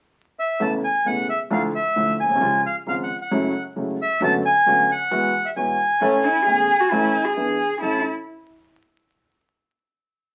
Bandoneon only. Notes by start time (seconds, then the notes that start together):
0.39 E5
0.62 A5
0.84 G#5
1.07 F#5
1.29 E5
1.52 F5
1.75 E5
2.20 G#5
2.66 F5
2.88 F5
3.03 F#5
3.22 F#5
4.02 E5
4.23 A5
4.45 G#5
4.91 F#5
5.46 E5
5.57 G#5
7.83 A5